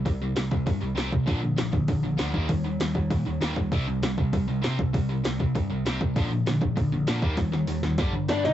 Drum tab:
HH |o-o-o-o-|o-o-o-o-|o-o-o-o-|o-o-o-o-|
SD |--o---o-|--o---o-|--o---o-|--o---o-|
BD |o--oo--o|o--oo--o|o--oo--o|o--oo--o|

HH |o-o-o-o-|o-o-o-o-|o-o-o-o-|
SD |--o---o-|--o---o-|oo-oo-oo|
BD |o--oo--o|o--oo--o|o---o---|